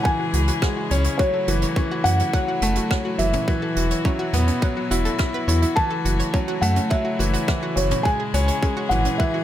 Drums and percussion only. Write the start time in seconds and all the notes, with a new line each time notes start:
0.05 kick, closed hi-hat
0.33 closed hi-hat
0.48 closed hi-hat
0.62 kick, cross-stick, closed hi-hat
0.91 closed hi-hat
1.04 closed hi-hat
1.19 kick, closed hi-hat
1.48 closed hi-hat
1.62 closed hi-hat
1.76 kick, closed hi-hat
2.05 closed hi-hat
2.19 closed hi-hat
2.33 kick, closed hi-hat
2.62 closed hi-hat
2.75 closed hi-hat
2.90 kick, cross-stick, closed hi-hat
3.19 closed hi-hat
3.33 closed hi-hat, mid tom
3.48 kick, closed hi-hat
3.76 closed hi-hat
3.91 closed hi-hat
4.05 kick, closed hi-hat
4.33 closed hi-hat, mid tom
4.47 closed hi-hat
4.62 kick, closed hi-hat
4.91 closed hi-hat
5.05 closed hi-hat
5.18 kick, cross-stick, closed hi-hat
5.48 closed hi-hat
5.62 closed hi-hat
5.77 kick, closed hi-hat
6.05 closed hi-hat
6.20 closed hi-hat
6.34 kick, closed hi-hat
6.62 closed hi-hat
6.76 closed hi-hat
6.90 kick, closed hi-hat
7.20 closed hi-hat
7.34 closed hi-hat
7.48 kick, cross-stick, closed hi-hat
7.77 closed hi-hat
7.91 closed hi-hat, mid tom
8.05 kick, closed hi-hat
8.34 closed hi-hat
8.48 closed hi-hat
8.63 kick, closed hi-hat
8.91 closed hi-hat, mid tom
9.05 closed hi-hat
9.20 kick, closed hi-hat